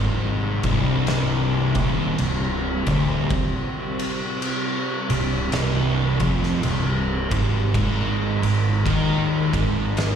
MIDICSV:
0, 0, Header, 1, 5, 480
1, 0, Start_track
1, 0, Key_signature, -3, "minor"
1, 0, Tempo, 1113173
1, 1422, Time_signature, 4, 2, 24, 8
1, 4379, End_track
2, 0, Start_track
2, 0, Title_t, "String machine"
2, 0, Program_c, 0, 50
2, 0, Note_on_c, 0, 48, 83
2, 0, Note_on_c, 0, 55, 76
2, 0, Note_on_c, 0, 60, 91
2, 3325, Note_off_c, 0, 60, 0
2, 3327, Note_off_c, 0, 48, 0
2, 3327, Note_off_c, 0, 55, 0
2, 3339, Note_on_c, 0, 63, 72
2, 3340, Note_on_c, 0, 70, 88
2, 3342, Note_on_c, 0, 56, 81
2, 4379, Note_off_c, 0, 56, 0
2, 4379, Note_off_c, 0, 63, 0
2, 4379, Note_off_c, 0, 70, 0
2, 4379, End_track
3, 0, Start_track
3, 0, Title_t, "Distorted electric guitar"
3, 0, Program_c, 1, 30
3, 0, Note_on_c, 1, 44, 108
3, 268, Note_off_c, 1, 44, 0
3, 278, Note_on_c, 1, 36, 106
3, 748, Note_off_c, 1, 36, 0
3, 758, Note_on_c, 1, 39, 108
3, 937, Note_off_c, 1, 39, 0
3, 941, Note_on_c, 1, 36, 77
3, 1177, Note_off_c, 1, 36, 0
3, 1240, Note_on_c, 1, 38, 105
3, 1418, Note_off_c, 1, 38, 0
3, 2201, Note_on_c, 1, 36, 77
3, 2346, Note_off_c, 1, 36, 0
3, 2383, Note_on_c, 1, 36, 107
3, 2667, Note_off_c, 1, 36, 0
3, 2680, Note_on_c, 1, 41, 111
3, 2857, Note_off_c, 1, 41, 0
3, 2864, Note_on_c, 1, 36, 78
3, 3097, Note_off_c, 1, 36, 0
3, 3158, Note_on_c, 1, 44, 105
3, 3334, Note_off_c, 1, 44, 0
3, 3339, Note_on_c, 1, 44, 114
3, 3624, Note_off_c, 1, 44, 0
3, 3636, Note_on_c, 1, 44, 78
3, 3783, Note_off_c, 1, 44, 0
3, 3820, Note_on_c, 1, 51, 109
3, 4104, Note_off_c, 1, 51, 0
3, 4111, Note_on_c, 1, 44, 108
3, 4379, Note_off_c, 1, 44, 0
3, 4379, End_track
4, 0, Start_track
4, 0, Title_t, "Fingered electric bass"
4, 0, Program_c, 2, 33
4, 0, Note_on_c, 2, 32, 93
4, 259, Note_off_c, 2, 32, 0
4, 276, Note_on_c, 2, 24, 101
4, 739, Note_off_c, 2, 24, 0
4, 758, Note_on_c, 2, 27, 105
4, 929, Note_off_c, 2, 27, 0
4, 940, Note_on_c, 2, 24, 80
4, 1218, Note_off_c, 2, 24, 0
4, 1237, Note_on_c, 2, 26, 96
4, 1409, Note_off_c, 2, 26, 0
4, 2199, Note_on_c, 2, 24, 91
4, 2370, Note_off_c, 2, 24, 0
4, 2383, Note_on_c, 2, 24, 97
4, 2659, Note_off_c, 2, 24, 0
4, 2675, Note_on_c, 2, 29, 105
4, 2847, Note_off_c, 2, 29, 0
4, 2864, Note_on_c, 2, 24, 85
4, 3139, Note_off_c, 2, 24, 0
4, 3155, Note_on_c, 2, 32, 100
4, 3326, Note_off_c, 2, 32, 0
4, 3340, Note_on_c, 2, 32, 98
4, 3616, Note_off_c, 2, 32, 0
4, 3633, Note_on_c, 2, 32, 83
4, 3805, Note_off_c, 2, 32, 0
4, 3819, Note_on_c, 2, 39, 98
4, 4095, Note_off_c, 2, 39, 0
4, 4112, Note_on_c, 2, 32, 103
4, 4379, Note_off_c, 2, 32, 0
4, 4379, End_track
5, 0, Start_track
5, 0, Title_t, "Drums"
5, 273, Note_on_c, 9, 51, 79
5, 276, Note_on_c, 9, 36, 108
5, 317, Note_off_c, 9, 51, 0
5, 319, Note_off_c, 9, 36, 0
5, 461, Note_on_c, 9, 51, 107
5, 467, Note_on_c, 9, 38, 117
5, 504, Note_off_c, 9, 51, 0
5, 510, Note_off_c, 9, 38, 0
5, 754, Note_on_c, 9, 51, 75
5, 757, Note_on_c, 9, 36, 104
5, 797, Note_off_c, 9, 51, 0
5, 800, Note_off_c, 9, 36, 0
5, 942, Note_on_c, 9, 51, 111
5, 985, Note_off_c, 9, 51, 0
5, 1235, Note_on_c, 9, 51, 80
5, 1238, Note_on_c, 9, 36, 103
5, 1279, Note_off_c, 9, 51, 0
5, 1281, Note_off_c, 9, 36, 0
5, 1424, Note_on_c, 9, 51, 106
5, 1425, Note_on_c, 9, 36, 115
5, 1467, Note_off_c, 9, 51, 0
5, 1468, Note_off_c, 9, 36, 0
5, 1722, Note_on_c, 9, 51, 79
5, 1765, Note_off_c, 9, 51, 0
5, 1906, Note_on_c, 9, 51, 118
5, 1949, Note_off_c, 9, 51, 0
5, 2198, Note_on_c, 9, 51, 80
5, 2241, Note_off_c, 9, 51, 0
5, 2381, Note_on_c, 9, 51, 111
5, 2387, Note_on_c, 9, 38, 119
5, 2424, Note_off_c, 9, 51, 0
5, 2430, Note_off_c, 9, 38, 0
5, 2673, Note_on_c, 9, 51, 81
5, 2676, Note_on_c, 9, 36, 107
5, 2716, Note_off_c, 9, 51, 0
5, 2719, Note_off_c, 9, 36, 0
5, 2773, Note_on_c, 9, 38, 36
5, 2816, Note_off_c, 9, 38, 0
5, 2860, Note_on_c, 9, 51, 115
5, 2903, Note_off_c, 9, 51, 0
5, 3153, Note_on_c, 9, 51, 86
5, 3154, Note_on_c, 9, 36, 104
5, 3196, Note_off_c, 9, 51, 0
5, 3197, Note_off_c, 9, 36, 0
5, 3339, Note_on_c, 9, 36, 113
5, 3340, Note_on_c, 9, 51, 121
5, 3382, Note_off_c, 9, 36, 0
5, 3383, Note_off_c, 9, 51, 0
5, 3636, Note_on_c, 9, 51, 78
5, 3679, Note_off_c, 9, 51, 0
5, 3819, Note_on_c, 9, 36, 110
5, 3821, Note_on_c, 9, 51, 109
5, 3862, Note_off_c, 9, 36, 0
5, 3864, Note_off_c, 9, 51, 0
5, 4111, Note_on_c, 9, 36, 114
5, 4113, Note_on_c, 9, 51, 81
5, 4154, Note_off_c, 9, 36, 0
5, 4156, Note_off_c, 9, 51, 0
5, 4299, Note_on_c, 9, 51, 106
5, 4305, Note_on_c, 9, 38, 112
5, 4342, Note_off_c, 9, 51, 0
5, 4349, Note_off_c, 9, 38, 0
5, 4379, End_track
0, 0, End_of_file